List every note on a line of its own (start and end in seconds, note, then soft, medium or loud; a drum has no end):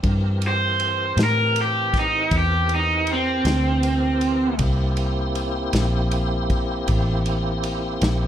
0.03 1.14 G2 medium
0.03 4.55 E3 medium
0.03 4.55 C4 medium
0.03 4.55 G4 medium
0.03 4.55 A#4 medium
0.03 kick medium
0.03 ride medium
0.42 ride medium
0.47 1.18 C5 medium
0.80 ride medium
1.17 2.28 A2 medium
1.17 snare loud
1.17 ride medium
1.23 1.58 A#4 medium
1.56 ride medium
1.62 1.96 G4 medium
1.94 kick medium
1.94 snare soft
1.94 ride medium
1.99 2.33 D#4 medium
2.31 3.42 E2 medium
2.31 kick medium
2.31 ride medium
2.37 2.72 G4 medium
2.69 ride medium
2.75 3.09 D#4 medium
3.07 ride medium
3.13 4.58 C4 medium
3.45 4.56 D2 medium
3.45 snare loud
3.45 ride medium
3.83 ride medium
4.21 ride medium
4.59 5.70 C2 medium
4.59 8.27 A#3 medium
4.59 8.27 C4 medium
4.59 8.27 E4 medium
4.59 8.27 G4 medium
4.59 kick medium
4.59 ride medium
4.97 ride medium
5.35 ride medium
5.73 6.84 A#1 medium
5.73 snare loud
5.73 ride medium
6.11 ride medium
6.50 kick medium
6.50 ride medium
6.88 7.99 A1 medium
6.88 kick medium
6.88 ride medium
7.26 ride medium
7.64 ride medium
8.01 8.27 A#1 medium
8.01 snare medium
8.01 ride medium